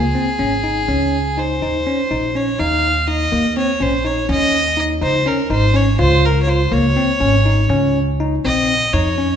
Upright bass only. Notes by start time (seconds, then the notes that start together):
Already playing: C#2
0.39 G#1
0.88 C#2
1.62 D#2
2.11 A#1
2.60 D#2
3.32 D#2
3.81 A#1
4.29 D#2
5.02 C#2
5.50 G#1
5.99 C#2
6.72 C#2
7.20 G#1
7.69 C#2
8.44 A#1
8.93 F2